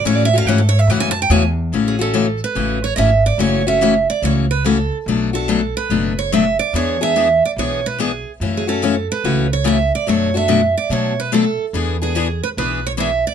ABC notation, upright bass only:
X:1
M:4/4
L:1/8
Q:"Swing" 1/4=144
K:A
V:1 name="Upright bass" clef=bass
A,,2 G,,2 F,,2 E,,2 | A,,,4 A,,,2 G,,,2 | F,,,4 C,,4 | B,,,4 F,,,4 |
E,,4 B,,,4 | F,,4 C,,4 | F,,4 B,,4 | E,,4 B,,,4 |]